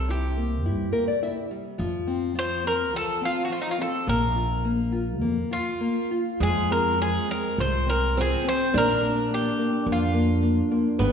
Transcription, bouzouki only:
0.00 0.10 A4 medium
0.10 1.47 G4 medium
2.39 2.63 C5 medium
2.67 2.94 A#4 medium
2.96 3.21 A4 medium
3.25 3.43 F4 medium
3.45 3.52 F#4 medium
3.52 3.61 F4 medium
3.62 3.70 D#4 medium
3.71 3.79 F4 medium
3.82 4.06 A4 medium
4.09 5.78 A#4 medium
5.53 6.44 F4 medium
6.43 6.72 G#4 medium
6.72 6.98 A#4 medium
7.02 7.30 G#4 medium
7.31 7.60 A#4 medium
7.60 7.89 C5 medium
7.90 8.18 A#4 medium
8.21 8.48 G#4 medium
8.49 8.76 C5 medium
8.78 9.29 A#4 medium
9.34 9.85 G4 medium
9.92 10.70 F4 medium

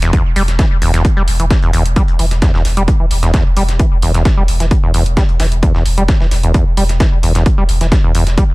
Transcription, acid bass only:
0.02 0.11 E2 loud
0.36 0.43 G3 loud
0.59 0.66 E3 medium
0.82 0.92 E2 loud
0.94 1.03 E2 loud
1.17 1.23 G3 loud
1.40 1.46 E3 medium
1.63 1.72 E2 loud
1.73 1.83 E2 loud
1.96 2.03 G3 loud
2.19 2.26 E3 medium
2.42 2.52 E2 loud
2.54 2.63 E2 loud
2.77 2.83 G3 loud
3.00 3.06 E3 medium
3.23 3.32 E2 loud
3.57 3.63 G3 loud
3.79 3.86 E3 medium
4.02 4.12 E2 loud
4.14 4.23 E2 loud
4.37 4.43 G3 loud
4.60 4.66 E3 medium
4.83 4.92 E2 loud
4.94 5.04 E2 loud
5.17 5.24 G3 loud
5.40 5.46 E3 medium
5.63 5.73 E2 loud
5.75 5.84 E2 loud
5.98 6.04 G3 loud
6.21 6.27 E3 medium
6.44 6.52 E2 loud
6.77 6.84 G3 loud
7.00 7.07 E3 medium
7.23 7.33 E2 loud
7.35 7.44 E2 loud
7.58 7.64 G3 loud
7.81 7.87 E3 medium
8.04 8.13 E2 loud
8.15 8.25 E2 loud
8.37 8.44 G3 loud

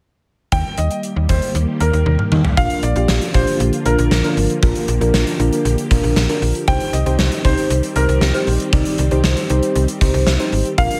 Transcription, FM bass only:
0.52 0.63 D#2 loud
0.78 0.89 D#2 loud
1.16 1.27 D#2 medium
1.29 1.40 D#2 loud
1.55 1.66 D#2 loud
1.80 1.91 D#2 loud
1.93 2.04 D#2 loud
2.06 2.17 D#2 loud
2.32 2.43 D#3 loud
2.57 2.68 A#1 loud
2.83 2.94 A#1 loud
2.96 3.07 A#1 loud
3.09 3.20 A#1 loud
3.35 3.45 A#1 loud
3.60 3.71 A#1 loud
3.86 3.96 A#1 loud
3.98 4.09 A#1 loud
4.11 4.22 A#1 loud
4.37 4.48 G#1 loud
4.63 4.73 A#1 loud
4.88 4.99 A#1 loud
5.01 5.12 A#1 loud
5.14 5.25 A#1 medium
5.39 5.50 A#1 loud
5.65 5.76 A#1 loud
5.91 6.02 A#1 medium
6.04 6.14 A#1 medium
6.16 6.27 A#1 loud
6.42 6.53 A#1 medium
6.68 6.79 C2 loud
6.93 7.04 C2 loud
7.06 7.17 C2 medium
7.19 7.30 C2 loud
7.45 7.56 C2 loud
7.70 7.81 C2 loud
7.96 8.07 C2 loud
8.09 8.20 C2 loud
8.21 8.32 C2 loud
8.47 8.58 A#1 medium
8.73 8.84 C2 loud
8.99 9.09 C2 loud
9.11 9.22 C2 loud
9.24 9.35 C2 loud
9.50 9.61 C2 loud
9.76 9.86 C2 loud
10.01 10.12 C2 loud
10.14 10.25 C2 loud
10.27 10.38 C2 loud
10.52 10.63 G#1 medium
10.78 10.89 A#1 loud

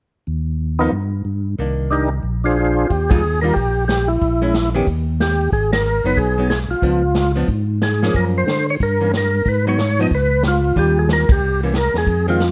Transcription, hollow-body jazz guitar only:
0.81 0.91 F3 soft
0.81 0.92 B3 medium
0.81 0.92 D#4 medium
1.59 2.24 D#3 soft
1.59 2.24 A#3 soft
1.59 2.24 D4 medium
3.10 3.21 D#3 medium
3.10 3.21 G3 medium
3.10 3.21 D4 medium
3.10 3.21 F4 medium
3.42 3.53 D#3 medium
3.42 3.54 G3 medium
3.42 3.54 D4 medium
3.42 3.54 F4 medium
4.42 4.52 G#3 medium
4.42 4.53 C#4 medium
4.42 4.53 E4 medium
4.74 4.85 D#3 medium
4.74 4.85 B3 medium
4.74 4.86 C#4 medium
4.74 4.86 G4 medium
6.05 6.35 F#3 medium
6.05 6.36 B3 medium
6.05 6.36 D#4 medium
6.38 6.49 F#3 medium
6.38 6.49 B3 medium
6.38 6.50 D#4 medium
6.83 7.01 F3 medium
6.83 7.01 B3 medium
6.83 7.02 D4 medium
7.35 7.47 F3 medium
7.35 7.47 B3 medium
7.35 7.47 D4 medium
8.03 8.45 F3 medium
8.03 8.45 A#3 medium
8.03 8.45 C#4 medium
9.00 9.11 E3 soft
9.00 9.12 A#3 soft
9.00 9.12 C#4 medium
9.67 9.77 F#3 medium
9.67 9.77 B3 medium
9.67 9.77 D#4 medium
9.99 10.10 F3 medium
9.99 10.10 B3 medium
9.99 10.10 D#4 medium
10.76 11.25 D#3 medium
10.76 11.25 G3 medium
10.76 11.25 D4 medium
10.76 11.25 F4 medium
11.63 11.73 E3 medium
11.63 11.73 A#3 medium
11.63 11.74 C#4 medium
12.28 12.38 D#3 medium
12.28 12.38 G#3 medium
12.28 12.39 C4 medium

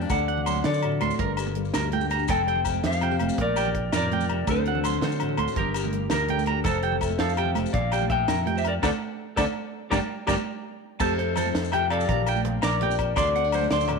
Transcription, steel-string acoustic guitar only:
0.00 0.11 F2 medium
0.00 0.11 D4 soft
0.10 1.17 D3 medium
0.29 0.83 F#4 medium
0.46 1.17 F#3 medium
0.46 1.18 C4 medium
0.64 1.01 D4 medium
0.83 1.18 A2 medium
0.83 1.18 F#4 medium
1.02 1.18 D4 medium
1.20 2.27 G2 medium
1.38 1.92 G4 medium
1.56 2.27 G3 medium
1.56 2.27 A#3 medium
1.74 2.09 D4 medium
1.92 2.26 D3 medium
1.92 2.01 F4 medium
2.01 2.29 G4 medium
2.10 2.27 D4 medium
2.29 3.38 F2 medium
2.47 3.01 G4 medium
2.65 3.36 F3 medium
2.65 3.36 A3 medium
2.84 3.19 C4 medium
3.01 3.36 C3 medium
3.01 3.11 F4 medium
3.11 3.38 G4 soft
3.20 3.38 C4 medium
3.38 4.10 A#2 medium
3.57 4.45 G4 medium
3.74 4.45 A#3 medium
3.74 muted steel-string acoustic guitar stroke medium
3.93 4.11 A2 medium
4.11 4.29 A#2 medium
4.29 4.47 C3 medium
4.49 5.55 D3 medium
4.49 4.83 F#3 medium
4.49 4.84 C4 medium
4.49 5.02 D4 medium
4.49 4.66 F#4 medium
4.68 5.21 F#4 medium
4.84 5.55 F#3 medium
4.84 5.55 C4 medium
5.03 5.39 D4 medium
5.21 5.55 A2 medium
5.21 5.55 F#4 medium
5.40 5.55 D4 medium
5.58 6.64 G2 medium
5.76 6.29 G4 medium
5.92 6.63 G3 medium
5.92 6.63 A#3 medium
6.12 6.45 D4 medium
6.29 6.63 D3 medium
6.29 6.64 G4 medium
6.47 6.63 D4 medium
6.64 7.74 F2 medium
6.82 7.37 G4 medium
7.01 7.72 F3 medium
7.01 7.72 A3 medium
7.19 7.55 C4 medium
7.37 7.72 C3 medium
7.37 7.72 G4 medium
7.56 7.74 C4 medium
7.74 8.47 A#2 medium
7.93 8.46 G4 medium
8.09 8.80 F3 medium
8.09 8.81 A#3 soft
8.29 8.64 D4 medium
8.46 8.83 F2 medium
8.46 8.81 G4 medium
8.65 8.81 D4 medium
8.82 8.89 A3 medium
8.82 8.88 C4 medium
8.82 8.88 D4 medium
9.38 9.44 A3 medium
9.38 9.44 C4 medium
9.38 9.44 D4 medium
9.91 9.97 G3 medium
9.91 9.97 A#3 medium
9.91 9.97 D4 medium
10.28 10.34 G3 medium
10.28 10.34 A#3 medium
10.28 10.34 D4 medium
11.00 12.09 F2 medium
11.00 11.36 A3 medium
11.00 11.19 C4 medium
11.00 11.72 G4 medium
11.20 11.55 C4 medium
11.36 12.06 F3 medium
11.36 12.07 A3 medium
11.56 11.90 C4 medium
11.72 12.06 C3 medium
11.72 12.07 G4 medium
11.92 12.09 C4 medium
12.09 12.81 A#2 medium
12.09 12.44 A#3 medium
12.09 12.27 D4 medium
12.09 12.81 G4 medium
12.28 12.63 D4 medium
12.45 13.15 F3 medium
12.45 13.15 A#3 medium
12.64 13.00 D4 medium
12.82 13.17 F2 medium
12.82 13.15 G4 medium
13.01 13.16 D4 medium
13.17 13.99 D3 medium
13.17 13.34 C4 medium
13.17 13.35 D4 medium
13.17 13.88 F#4 medium
13.35 13.44 C4 medium
13.44 13.71 D4 soft
13.53 13.99 F#3 medium
13.53 muted steel-string acoustic guitar stroke medium
13.72 13.99 D4 medium
13.89 13.99 A2 medium
13.89 13.99 F#4 medium

